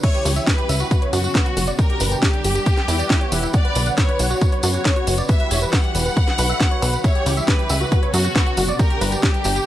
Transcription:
0.03 C#3 E3 G3 E4 G4 C#5 E5, kick, closed hi-hat, crash, tambourine
0.14 G4, closed hi-hat
0.25 C#2 G4, open hi-hat, tambourine
0.36 E5, closed hi-hat, tambourine
0.47 G4 B4, kick, snare, closed hi-hat, tambourine
0.58 G4, closed hi-hat
0.69 C#2 E5, open hi-hat, tambourine
0.80 F#4, closed hi-hat, tambourine
0.91 B2 C#3 F#3 C#4 F#4, kick, closed hi-hat, tambourine
1.02 C#5, closed hi-hat
1.13 F#2 F#4, open hi-hat, tambourine
1.24 F#4, closed hi-hat, tambourine
1.35 B4, kick, snare, closed hi-hat, tambourine
1.46 F#4, closed hi-hat
1.57 F#1 F#4, open hi-hat, tambourine
1.67 D5, closed hi-hat, tambourine
1.78 D3 G3 D4 G4 A#4, kick, closed hi-hat, tambourine
1.90 G4, closed hi-hat
2.00 G1 B4, open hi-hat, tambourine
2.12 G4, closed hi-hat, tambourine
2.22 G4, kick, snare, closed hi-hat, tambourine
2.34 closed hi-hat
2.44 G1 G4, open hi-hat, tambourine
2.55 G4, closed hi-hat, tambourine
2.66 E3 B3 G4 F#5, kick, closed hi-hat, tambourine
2.77 snare, closed hi-hat
2.88 E2 E4, open hi-hat, tambourine
2.99 D5, closed hi-hat, tambourine
3.10 E4, kick, snare, closed hi-hat, tambourine
3.21 C#5, closed hi-hat
3.32 E1 E4, open hi-hat, tambourine
3.43 E4, closed hi-hat, tambourine
3.53 D3 F#3 B4 D5 F#5, kick, closed hi-hat, tambourine
3.65 B4, closed hi-hat
3.75 B1 B4, open hi-hat, tambourine
3.86 F#5, closed hi-hat, tambourine
3.97 B4 C#5, kick, snare, closed hi-hat, tambourine
4.09 B4, closed hi-hat
4.19 B1 F#5, open hi-hat, tambourine
4.30 F#4, closed hi-hat, tambourine
4.41 C#3 F#4, kick, closed hi-hat, tambourine
4.52 C#5, closed hi-hat
4.63 F#2 F#4 C#5, open hi-hat, tambourine
4.74 F#4, closed hi-hat, tambourine
4.85 C#5, kick, snare, closed hi-hat, tambourine
4.96 F#4, closed hi-hat
5.07 F#1 F#4, open hi-hat, tambourine
5.18 D5, closed hi-hat, tambourine
5.28 E3 G3 F#4 G4 B4 E5, kick, closed hi-hat, tambourine
5.40 B4, closed hi-hat
5.51 E1 C#5, open hi-hat, tambourine
5.62 B4, closed hi-hat, tambourine
5.73 B4 F#5, kick, snare, closed hi-hat, tambourine
5.84 closed hi-hat
5.95 E1 B4, open hi-hat, tambourine
6.06 B4, closed hi-hat, tambourine
6.17 D3 F#3 F#4 B4, kick, closed hi-hat, tambourine
6.28 snare, closed hi-hat
6.38 B1 B4, open hi-hat, tambourine
6.49 E5, closed hi-hat, tambourine
6.60 B4, kick, snare, closed hi-hat, tambourine
6.71 C#5, closed hi-hat
6.82 B1 B4, open hi-hat, tambourine
6.93 B4, closed hi-hat, tambourine
7.04 C#3 E3 G3 E4 G4 C#5 E5, kick, closed hi-hat, tambourine
7.15 G4, closed hi-hat
7.26 C#2 G4, open hi-hat, tambourine
7.37 E5, closed hi-hat, tambourine
7.47 G4 B4, kick, snare, closed hi-hat, tambourine
7.59 G4, closed hi-hat
7.69 C#2 E5, open hi-hat, tambourine
7.81 F#4, closed hi-hat, tambourine
7.92 B2 F#3 C#4 F#4, kick, closed hi-hat, tambourine
8.03 C#5, closed hi-hat
8.14 F#2 F#4, open hi-hat, tambourine
8.25 F#4, closed hi-hat, tambourine
8.36 B4, kick, snare, closed hi-hat
8.47 F#4, closed hi-hat
8.57 F#1 F#4, open hi-hat, tambourine
8.68 D5, closed hi-hat, tambourine
8.79 D3 G3 D4 G4 A#4, kick, closed hi-hat, tambourine
8.90 G4, closed hi-hat
9.01 G1 B4, open hi-hat, tambourine
9.12 G4, closed hi-hat, tambourine
9.23 G4, kick, snare, closed hi-hat, tambourine
9.34 closed hi-hat
9.44 G1 G4, open hi-hat, tambourine
9.56 G4, closed hi-hat, tambourine

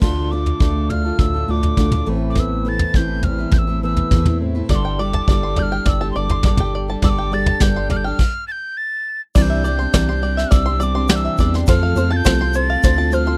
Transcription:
0.01 D2 D3 A3 D4 F4 A4 C6, kick, floor tom, crash
0.31 A3 D4 F4 A4 D6
0.46 floor tom
0.60 D2 D3 A3 D4 F4 A4, kick
0.90 A3 D4 F4 A4 F6, floor tom
1.05 D4 F4 A4
1.19 D2 A2 E6, kick, floor tom
1.34 D4 F4 A4
1.48 D2 A3 D4 F4 A4 D6
1.63 floor tom
1.77 D2 D3 A3 D4 F4 A4, kick, mid tom
1.91 D4 F4 A4, floor tom, mid tom
2.06 A1 A2 E3 A3 C4 E4 B4
2.30 D6
2.35 B3, kick, floor tom
2.39 E6
2.65 E3 A3 C4 E4 B4 A6
2.79 floor tom
2.94 A1 A2 E3 A3 C4 E4 B4 G6, kick
3.23 E2 A3 C4 E4 B4 F6, floor tom
3.38 A3 C4 E4 B4
3.51 A1 G6, kick, floor tom
3.58 E6
3.67 A3 C4 E4 B4
3.83 E3 A3 B3 C4 E4 B4 E6
3.96 floor tom
4.11 E2 A2 E3 A3 C4 E4 B4, kick, mid tom
4.25 A3 C4 E4 B4, floor tom, mid tom
4.41 A2 C4
4.55 A3 C4 E4 B4
4.69 G1 G2 D3 G3 D4 G4 A4 D5 D6, kick, floor tom
4.75 C6
4.85 G5
4.99 G3 D4 G4 A4 D5 D6
5.13 A5, floor tom
5.28 G1 G2 D3 G3 D4 G4 A4 D5, kick
5.43 C6
5.56 G3 D4 G4 A4 D5 G6, floor tom
5.62 F6
5.72 G3 D4 G4 A4 G5
5.86 G1 D5 E6, kick, floor tom
6.01 G3 D4 G4 A4 A5
6.12 G3 C6
6.16 G1 D4 G4 A4 D5 D6
6.29 C6, floor tom
6.43 G1 G2 D3 G3 D4 G4 A4 D5, kick, mid tom
6.57 G3 D4 G4 A4 G5, floor tom, mid tom
6.75 D5
6.88 G3 D4 G4 A4 A5
7.02 G1 G2 D3 G3 D4 G4 A4 D5 E6, kick, floor tom
7.10 D6
7.18 G5
7.32 G3 D4 G4 A4 D5 A6
7.46 A5, floor tom
7.60 G1 G2 D3 G3 D4 G4 A4 D5 G6, kick, snare
7.76 C6
7.90 G3 D4 G4 A4 D5 F6, floor tom
7.97 G6
8.04 G3 D4 G4 A4 G5 F6
8.19 kick, crash
8.48 G6 A6
8.77 A6
9.35 C2 C3 E3 G3 C4 D4 G4 D5 A6, kick, crash, shaker
9.42 G6
9.50 E5
9.64 G3 C4 D4 G4 D5, shaker
9.79 G3 C4 D4 G4 C6
9.94 C2 C3 E3 G3 C4 D4 G4 D5, kick, snare, ride bell, shaker
10.09 G3 C4 D4 G4 C6
10.22 G3 C4 D4 G4 D5
10.37 E5, snare
10.51 C2 D5 E6, kick, ride bell, shaker
10.66 G3 C4 D4 G4 C6
10.80 G3 C4 D4 G4 D5 D6, shaker
10.95 G3 C4 D4 G4 C6
11.08 C3 E3 G3 C4 D4 G4 D5 G6, snare, ride bell, shaker
11.16 E6
11.25 E5
11.38 E2 G3 C4 D4 G4 D5, kick, shaker
11.54 C6, snare
11.67 F2 F3 A3 C4 F4 A4 C5 F6, kick, ride bell, shaker
11.83 F5
11.96 F2 A3 C4 F4 A4 C5, shaker
12.10 C4 F4 A4 A5 A6
12.17 G6
12.25 C2 F3 A3 C4 F4 A4 C5, kick, snare, ride bell, shaker
12.39 C4 F4 A4 C6
12.53 A3 C4 F4 A4 C5 A6, shaker
12.70 F5
12.83 D2 C5, kick, ride bell, shaker
12.96 C4 F4 A4 A5
13.11 A3 C4 F4 A4 C5 F6, shaker
13.26 C4 F4 A4 C6

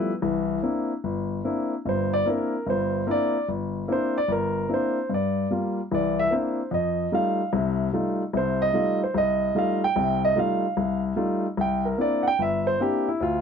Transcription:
Already playing: F3 G3 A3 B3 E4 B4
0.22 C2 E3
0.62 A#3 C4 D4 E4
1.04 G1
1.44 A#3 C4 D4 E4
1.85 G1 G2 C5
2.13 D5
2.26 A#3 C4 D4 E4 A#4
2.67 G1 G2 C5
3.07 A#3 C4 D4 E4
3.11 D5
3.48 G1
3.88 A#3 C4 D4 E4
3.92 C5
4.18 D5
4.28 G1 A#4
4.69 A#3 C4 D4 E4
4.74 C5
5.09 G2
5.14 D5
5.51 G3 A#3 F4
5.91 C2 E3 D5
6.19 E5
6.31 A#3 C4 D4 E4 C5
6.71 F2 D#5
7.12 G3 A3 D#4 F4 F5
7.53 C2 C3
7.93 G3 A3 D#4 F4
8.33 C2 C3 C5
8.62 D#5
8.73 G3 A3 D#4 F4
9.04 C5
9.14 C2 D#5
9.55 G3 A3 D#4 F4 F5
9.84 G5
9.96 C2 C3
10.25 D#5
10.36 G3 A3 D#4 F4 F5
10.77 C2
11.16 G3 A3 D#4 F4
11.57 C2 G5
11.85 A#4
11.98 A#3 C4 D4 E4 D5
12.23 F#5
12.28 G5
12.39 G1 E5
12.67 C5
12.80 A#3 C4 D4 E4 G4
13.08 E4
13.20 D2 F4

